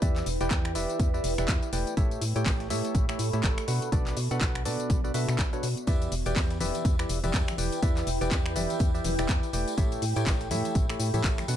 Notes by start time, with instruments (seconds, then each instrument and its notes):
Already playing: ambient pad E4 B4 G5
0.02 fm bass E2, synth stab E3 E4 G4 B4 D5 E5, kick, closed hi-hat, tambourine
0.16 snare, clap, closed hi-hat, tambourine
0.26 fm bass E1, closed hi-hat, open hi-hat, tambourine
0.41 fm bass E1, synth stab E3 E4 G4 B4 D5 G5, snare, closed hi-hat, tambourine
0.51 fm bass E2, kick, snare, clap, closed hi-hat, tambourine
0.65 finger snap, closed hi-hat
0.75 fm bass E1, synth stab E3 E4 G4 B4 D5 E5, closed hi-hat, open hi-hat, tambourine
0.89 closed hi-hat, tambourine
0.99 fm bass E2, kick, closed hi-hat, tambourine
1.14 synth stab E3 E4 G4 B4 D5 E5, tambourine
1.24 fm bass E1, closed hi-hat, open hi-hat, tambourine
1.38 fm bass E1, synth stab E3 E4 G4 B4 D5 E5, finger snap, snare, closed hi-hat, tambourine
1.48 fm bass E2, kick, snare, clap, closed hi-hat, tambourine
1.63 closed hi-hat, tambourine
1.73 fm bass E1, synth stab A3 E4 G4 B4 D5 G5, closed hi-hat, open hi-hat, tambourine
1.87 closed hi-hat, tambourine
1.97 fm bass A1, synth stab A3 E4 G4 A4 C#5 E5, ambient pad A4, kick, closed hi-hat, tambourine
2.11 ambient pad E5 B5 C#6, closed hi-hat, tambourine
2.21 fm bass A2, closed hi-hat, open hi-hat, tambourine
2.36 fm bass A2, synth stab A3 E4 G4 A4 C#5 G5, closed hi-hat, tambourine
2.46 fm bass A1, kick, snare, clap, closed hi-hat, open hi-hat, tambourine
2.60 snare, closed hi-hat
2.70 fm bass A2, synth stab A3 E4 G4 A4 C#5 E5, closed hi-hat, open hi-hat, tambourine
2.85 closed hi-hat, tambourine
2.95 fm bass A1, kick, closed hi-hat, tambourine
3.09 synth stab A3 E4 G4 A4 C#5 E5, finger snap, tambourine
3.19 fm bass A2, closed hi-hat, open hi-hat, tambourine
3.33 fm bass A2, synth stab A3 E4 G4 A4 C#5 E5, snare, closed hi-hat, tambourine
3.43 fm bass A1, kick, snare, clap, closed hi-hat, tambourine
3.58 finger snap, closed hi-hat, tambourine
3.68 synth stab B2 D4 F#4 A4 B4 F#5, fm bass B2, ambient pad B3, snare, closed hi-hat, open hi-hat, tambourine
3.82 closed hi-hat, tambourine
3.92 fm bass B1, synth stab B2 D4 F#4 A4 B4 D5, ambient pad F#4, kick, closed hi-hat, tambourine
4.07 ambient pad D5, snare, clap, closed hi-hat, tambourine
4.17 fm bass B2, closed hi-hat, open hi-hat, tambourine
4.31 fm bass B2, synth stab B2 D4 F#4 A4 B4 F#5, snare, closed hi-hat, tambourine
4.41 fm bass B1, kick, snare, clap, closed hi-hat, tambourine
4.55 finger snap, closed hi-hat
4.65 fm bass B2, synth stab B2 D4 F#4 A4 B4 D5, closed hi-hat, open hi-hat, tambourine
4.80 closed hi-hat, tambourine
4.90 fm bass B1, kick, closed hi-hat, tambourine
5.04 synth stab B2 D4 F#4 A4 B4 D5, tambourine
5.14 fm bass B2, synth stab B2 D4 F#4 A4 B4 E5, closed hi-hat, open hi-hat, tambourine
5.28 fm bass B2, finger snap, snare, closed hi-hat, tambourine
5.39 fm bass B1, kick, snare, clap, closed hi-hat, tambourine
5.53 synth stab B2 D4 F#4 A4 B4 C#5, closed hi-hat, tambourine
5.63 fm bass B2, closed hi-hat, open hi-hat, tambourine
5.77 closed hi-hat, tambourine
5.87 fm bass E2, synth stab E3 E4 G4 B4 D5 E5, ambient pad E4, kick, closed hi-hat, tambourine
5.97 ambient pad G5
6.01 closed hi-hat, tambourine
6.08 ambient pad B4
6.12 fm bass E1, closed hi-hat, open hi-hat, tambourine
6.26 fm bass E1, synth stab E3 E4 G4 B4 D5 G5, closed hi-hat, tambourine
6.36 fm bass E2, kick, snare, clap, closed hi-hat, open hi-hat, tambourine
6.50 snare, closed hi-hat, tambourine
6.60 fm bass E1, synth stab E3 E4 G4 B4 D5 E5, closed hi-hat, open hi-hat, tambourine, high conga
6.74 closed hi-hat, tambourine
6.85 fm bass E2, kick, closed hi-hat, tambourine
6.99 synth stab E3 E4 G4 B4 D5 E5, finger snap, tambourine
7.09 fm bass E1, closed hi-hat, open hi-hat, tambourine
7.24 fm bass E1, synth stab E3 E4 G4 B4 D5 E5, snare, closed hi-hat, tambourine, high conga
7.34 fm bass E2, kick, snare, clap, closed hi-hat, tambourine
7.48 finger snap, closed hi-hat, tambourine, high conga
7.58 fm bass E1, synth stab E3 E4 G4 B4 D5 G5, open hi-hat, tambourine
7.72 closed hi-hat, tambourine
7.82 fm bass E2, synth stab E3 E4 G4 B4 D5 E5, kick, closed hi-hat, tambourine
7.97 snare, clap, closed hi-hat, tambourine
8.07 fm bass E1, closed hi-hat, open hi-hat, tambourine
8.21 fm bass E1, synth stab E3 E4 G4 B4 D5 G5, snare, closed hi-hat, tambourine
8.31 fm bass E2, kick, snare, clap, closed hi-hat, tambourine
8.45 finger snap, closed hi-hat, tambourine
8.56 fm bass E1, synth stab E3 E4 G4 B4 D5 E5, closed hi-hat, open hi-hat, tambourine, high conga
8.70 closed hi-hat, tambourine
8.79 fm bass E2, kick, closed hi-hat, tambourine
8.94 synth stab E3 E4 G4 B4 D5 E5, tambourine
9.04 fm bass E1, closed hi-hat, open hi-hat, tambourine, high conga
9.18 fm bass E1, synth stab E3 E4 G4 B4 D5 E5, finger snap, snare, closed hi-hat, tambourine
9.29 fm bass E2, kick, snare, clap, closed hi-hat, tambourine
9.43 closed hi-hat, tambourine
9.53 fm bass E1, synth stab A3 E4 G4 B4 D5 G5, closed hi-hat, open hi-hat, tambourine
9.68 closed hi-hat, tambourine
9.78 fm bass A1, synth stab A3 E4 G4 A4 C#5 E5, ambient pad A4, kick, closed hi-hat, tambourine
9.92 ambient pad B5, closed hi-hat, tambourine
9.97 ambient pad E5
10.02 fm bass A2, closed hi-hat, open hi-hat, tambourine
10.16 fm bass A2, synth stab A3 E4 G4 A4 C#5 G5, closed hi-hat, tambourine
10.26 fm bass A1, kick, snare, clap, closed hi-hat, open hi-hat, tambourine
10.40 snare, closed hi-hat, tambourine
10.47 fm bass A2, synth stab A3 E4 G4 A4 C#5 E5, ambient pad C#6, closed hi-hat, open hi-hat, tambourine, high conga
10.65 closed hi-hat, tambourine
10.75 fm bass A1, kick, closed hi-hat, tambourine
10.89 synth stab A3 E4 G4 A4 C#5 E5, finger snap, tambourine
10.99 fm bass A2, open hi-hat, tambourine
11.14 fm bass A2, synth stab A3 E4 G4 A4 C#5 E5, closed hi-hat, tambourine, high conga
11.24 fm bass A1, kick, snare, clap, closed hi-hat, tambourine
11.38 finger snap, closed hi-hat, tambourine, high conga
11.48 fm bass B2, synth stab B2 D4 F#4 A4 B4 F#5, ambient pad B3, closed hi-hat, open hi-hat, tambourine